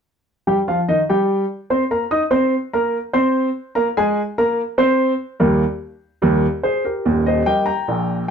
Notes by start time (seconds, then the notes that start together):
0.47 G3 G4 G5
0.68 F3 F4 F5
0.88 D#3 D#4 D#5
1.09 G3 G4 G5
1.70 C4 C5 C6
1.91 A#3 A#4 A#5
2.11 D#4 D#5 D#6
2.31 C4 C5 C6
2.73 A#3 A#4 A#5
3.13 C4 C5 C6
3.75 A#3 A#4 A#5
3.97 G#3 G#4 G#5
4.38 A#3 A#4 A#5
4.78 C4 C5 C6
5.40 D#2 G3 A#3 A#4
6.22 D#2 G3 A#3 A#4
6.63 G#4 C5
6.85 G4 A#4
7.05 D#1 D#2
7.26 C5 D#5
7.46 G3 A#3 G4 D#5 G5
7.66 G5 A#5
7.88 A#1 A#2